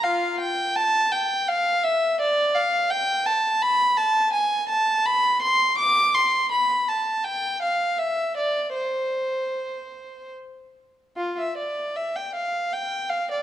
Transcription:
\new Staff \with { instrumentName = "Violin" } { \time 3/4 \key f \major \tempo 4 = 82 <f' f''>8 g''8 a''8 g''8 f''8 e''8 | \key c \major d''8 f''8 g''8 a''8 b''8 a''8 | aes''8 a''8 b''8 c'''8 d'''8 c'''8 | b''8 a''8 g''8 f''8 e''8 d''8 |
c''2 r4 | \key g \dorian f'16 e''16 d''8 e''16 g''16 f''8 g''8 f''16 d''16 | }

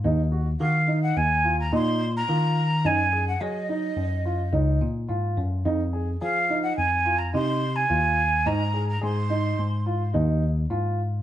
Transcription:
<<
  \new Staff \with { instrumentName = "Flute" } { \time 5/4 \key f \phrygian \tempo 4 = 107 r4 f''8. ges''16 aes''8. bes''16 c'''8. bes''4~ bes''16 | aes''8. ges''16 ees''2 r2 | r4 f''8. ges''16 aes''8. bes''16 c'''8. aes''4~ aes''16 | bes''8. bes''16 c'''2 r2 | }
  \new Staff \with { instrumentName = "Grand piano" } { \time 5/4 \key f \phrygian ees'8 ges'8 ges'8 ees'4 f'8 ees'4 f'4 | ees'8 aes'8 aes'8 ees'4 f'8 ees'4 f'4 | ees'8 aes'8 aes'8 ees'4 f'8 ees'4 f'4 | ees'8 aes'8 aes'8 ees'4 f'8 ees'4 f'4 | }
  \new Staff \with { instrumentName = "Tine electric piano" } { \clef bass \time 5/4 \key f \phrygian ees,4 ees4 ees,4 bes,4 ees4 | ges,4 ges4 ges,4 des,8 bes,8 aes,8 ges,8 | f,4 f4 f,4 c4 ees,4 | aes,4 aes,4 aes,4 ees,4 aes,4 | }
>>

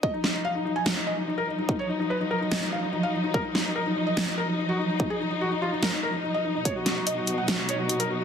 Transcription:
<<
  \new Staff \with { instrumentName = "Felt piano" } { \time 4/4 \key ees \minor \tempo 4 = 145 ees''16 ees'16 ees'16 ees'16 f''16 ees'16 ees'16 aes''16 ees'16 ees'16 ees''16 ees'16 ees'16 bes'16 ees'16 ees'16 | ees'16 des''16 ees'16 ees'16 ces''16 ees'16 bes'16 ees'16 ees''16 ees'16 f''16 ees'16 ees'16 f''16 ees'16 ees'16 | bes'16 ees'16 ees'16 ees'16 bes'16 ees'16 ees'16 ees''16 ees'16 ees'16 bes'16 ees'16 ees'16 ges'16 ees'16 ees'16 | ees'16 aes'16 ees'16 ees'16 ges'16 ees'16 f'16 ees'16 bes'16 ees'16 bes'16 ees'16 ees'16 ees''16 ees'16 ees'16 |
des''16 fis'16 fis'16 fis'16 dis''16 fis'16 fis'16 fis''16 fis'16 fis'16 des''16 fis'16 fis'16 bes'16 fis'16 fis'16 | }
  \new Staff \with { instrumentName = "String section" } { \clef bass \time 4/4 \key ees \minor << { ees'1~ | ees'1~ | ees'1~ | ees'1~ |
ees'1 | } \\ { <f ges>1~ | <f ges>1~ | <f ges>1~ | <f ges>1 |
<b, fis>1 | } >> }
  \new DrumStaff \with { instrumentName = "Drums" } \drummode { \time 4/4 bd8 sn8 r4 sn4 r4 | bd4 r4 sn4 r4 | bd8 sn8 r4 sn4 r4 | bd4 r4 sn4 r4 |
<hh bd>8 <hh sn>8 hh8 hh8 <hh sn>8 hh8 hh16 hh8. | }
>>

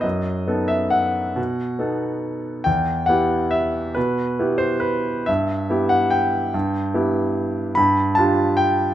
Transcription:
\new Staff \with { instrumentName = "Grand piano" } { \time 3/4 \key e \minor \tempo 4 = 141 << { dis''4. e''8 fis''4~ | fis''2. | g''4 fis''4 e''4 | b'4. c''8 b'4 |
e''4. fis''8 g''4~ | g''2. | b''4 a''4 g''4 | } \\ { fis,4 <b dis' a'>2 | b,4 <b dis' a'>2 | e,4 <b e' g'>2 | b,4 <b e' g'>2 |
g,4 <b e' g'>2 | g,4 <b e' g'>2 | g,4 <d' f' g'>2 | } >> }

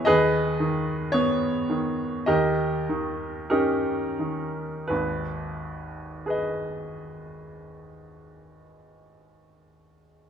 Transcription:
<<
  \new Staff \with { instrumentName = "Grand piano" } { \time 4/4 \key gis \minor \tempo 4 = 44 << { <gis' b' dis''>4 cis''4 <g' ais' dis''>4 <dis' g' ais'>4 | b'1 | } \\ { r1 | r4 <gis' b' dis''>2. | } >> }
  \new Staff \with { instrumentName = "Grand piano" } { \clef bass \time 4/4 \key gis \minor dis,8 dis8 b8 dis8 dis,8 dis8 cis'8 dis8 | <gis,, dis,>1 | }
>>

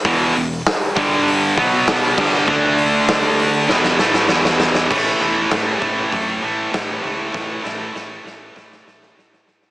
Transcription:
<<
  \new Staff \with { instrumentName = "Distorted electric guitar" } { \clef bass \time 4/4 \key a \major \tempo 4 = 99 <e, b, e>8 <e, b,>8 r8 <g, d g>4 <b, fis b>4 <g, d g>8 | <d a d'>2 <e, b, e>8 <a, e a>8 <e, b, e>4 | <a, e a>8 <a, e a>8 <a, e a>8 <a, e a>8 <a, e a>8 <a, e a>8 <a, e a>8 <a, e a>8 | <a, e a>8 <a, e a>8 <a, e a>8 <a, e a>8 <a, e a>8 <a, e a>8 <a, e a>8 <a, e a>8 | }
  \new Staff \with { instrumentName = "Distorted electric guitar" } { \clef bass \time 4/4 \key a \major <e, b, e>8 <e, b,>8 r8 <g, d g>4 <b, fis b>4 <g, d g>8 | <d a d'>2 <e, b, e>8 <a, e a>8 <e, b, e>4 | <a, e a>8 <a, e a>8 <a, e a>8 <a, e a>8 <a, e a>8 <a, e a>8 <a, e a>8 <a, e a>8 | <a, e a>8 <a, e a>8 <a, e a>8 <a, e a>8 <a, e a>8 <a, e a>8 <a, e a>8 <a, e a>8 | }
  \new Staff \with { instrumentName = "Fingered electric bass" } { \clef bass \time 4/4 \key a \major e,,8 e,,8 r8 g,,4 b,,4 g,,8 | d,2 e,,8 a,,8 e,,4 | a,,8 e,,8 a,,8 a,,8 fis,8 a,,8 a,,8 cis,8 | a,,8 a,,8 a,,8 a,,8 a,,8 a,,8 a,,8 a,,8 | }
  \new DrumStaff \with { instrumentName = "Drums" } \drummode { \time 4/4 <hho bd>8 hho8 <hho sn>8 <hho bd>8 hho8 <hho bd>8 sn8 <cymc bd>16 sn16 | bd8 hho8 <hho sn>8 hho8 sn16 sn16 sn16 sn16 sn16 sn16 sn16 sn16 | <cymc bd>4 <hho sn>8 bd8 <hho bd>4 <hho sn>4 | <bd sn>8 sn8 sn8 sn8 <bd sn>16 sn16 sn16 sn16 sn16 sn16 sn16 sn16 | }
>>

